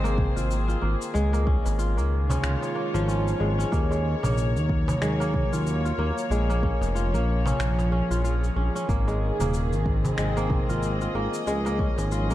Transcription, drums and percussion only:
0.05 cabasa
0.18 kick, darbuka ka, darbuka dum
0.37 cabasa
0.51 cabasa
0.69 darbuka ka, cabasa
1.02 cabasa
1.14 darbuka ka, cabasa
1.33 darbuka tek, cabasa
1.47 kick
1.66 darbuka ka, darbuka tek, cabasa
1.79 cabasa
1.99 cabasa
2.29 darbuka ka, darbuka tek, darbuka dum, cabasa
2.44 finger snap, cabasa
2.62 darbuka tek, cabasa
2.95 cabasa
3.09 cabasa
3.28 cabasa
3.41 darbuka tek
3.60 cabasa
3.73 kick, darbuka ka, cabasa
3.92 darbuka tek, cabasa
4.23 darbuka ka, darbuka tek, darbuka dum, cabasa
4.38 cabasa
4.57 cabasa
4.69 kick
4.88 darbuka tek, darbuka dum, cabasa
5.02 finger snap, cabasa
5.21 cabasa
5.33 kick, darbuka ka, darbuka dum
5.53 cabasa
5.67 cabasa
5.86 darbuka ka, cabasa
6.18 cabasa
6.31 darbuka ka, cabasa
6.50 darbuka tek, cabasa
6.63 kick
6.82 darbuka ka, darbuka tek, cabasa
6.96 cabasa
7.15 cabasa
7.46 darbuka ka, darbuka tek, darbuka dum, cabasa
7.60 finger snap, cabasa
7.79 darbuka tek, cabasa
8.12 cabasa
8.25 cabasa
8.44 cabasa
8.76 cabasa
8.89 kick, darbuka ka, cabasa
9.08 darbuka tek, cabasa
9.40 darbuka ka, darbuka tek, darbuka dum, cabasa
9.54 cabasa
9.73 cabasa
9.86 kick
10.04 darbuka tek, darbuka dum, cabasa
10.18 finger snap, cabasa
10.37 cabasa
10.50 kick, darbuka ka, darbuka dum
10.70 cabasa
10.83 cabasa
11.01 darbuka ka, cabasa
11.34 cabasa
11.46 darbuka ka, cabasa
11.65 darbuka tek, cabasa
11.79 kick
11.98 darbuka ka, darbuka tek, cabasa
12.12 cabasa
12.31 cabasa

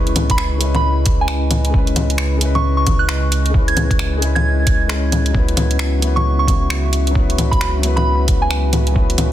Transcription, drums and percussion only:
0.07 closed hi-hat
0.16 closed hi-hat, low bongo
0.30 kick, closed hi-hat
0.38 finger snap
0.61 closed hi-hat
0.75 low bongo
1.06 kick, closed hi-hat
1.28 finger snap
1.51 closed hi-hat, low bongo
1.65 closed hi-hat
1.74 kick
1.87 closed hi-hat
1.96 closed hi-hat, low bongo
2.10 closed hi-hat
2.18 finger snap
2.41 closed hi-hat
2.55 low bongo
2.87 kick, closed hi-hat, low bongo
3.09 finger snap
3.32 closed hi-hat
3.46 closed hi-hat
3.54 kick
3.68 closed hi-hat
3.77 closed hi-hat, low bongo
3.91 kick, closed hi-hat
3.99 finger snap
4.22 closed hi-hat
4.36 low bongo
4.67 kick, closed hi-hat
4.89 finger snap
5.12 closed hi-hat, low bongo
5.26 closed hi-hat
5.35 kick
5.48 closed hi-hat
5.57 closed hi-hat, low bongo
5.71 closed hi-hat
5.79 finger snap
6.02 closed hi-hat
6.17 low bongo
6.48 kick, closed hi-hat, low bongo
6.70 finger snap
6.93 closed hi-hat
7.07 closed hi-hat
7.15 kick
7.30 closed hi-hat
7.38 closed hi-hat, low bongo
7.52 kick, closed hi-hat
7.61 finger snap
7.83 closed hi-hat
7.97 low bongo
8.28 kick, closed hi-hat
8.51 finger snap
8.73 closed hi-hat, low bongo
8.87 closed hi-hat
8.96 kick
9.10 closed hi-hat
9.18 closed hi-hat, low bongo

